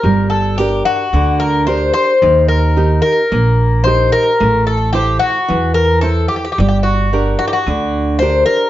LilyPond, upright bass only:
\new Staff \with { instrumentName = "Upright bass" } { \clef bass \time 4/4 \tempo 4 = 110 g,,2 d,2 | ees,2 bes,,2 | a,,2 e,2 | g,,2 d,2 | }